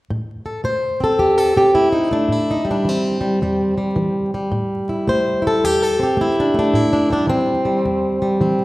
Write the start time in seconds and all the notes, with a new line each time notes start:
0.10 A2
0.46 A4
0.64 A3 C5
1.00 C4 A4
1.19 E2 G4
1.38 A4
1.56 C4 G4
1.74 A3 E4
1.92 D#4
2.11 A3 D4
2.28 A2 E4
2.51 D#4
2.65 G3
2.71 D4
2.85 E3 C4
3.21 G3
3.42 E2 G3
3.78 G3
3.96 E3
4.34 G3
4.52 A2
4.89 E4
5.08 A3 C5
5.42 E4
5.47 A4
5.64 E2 G4
5.82 A4
6.00 C4 G4
6.17 A3
6.21 E4
6.40 D4
6.54 A3
6.59 D4
6.74 A2 E4
6.93 D4
7.10 G3 D4
7.27 E3 C4
7.65 G3
7.85 E2
8.22 G3
8.41 E3 C4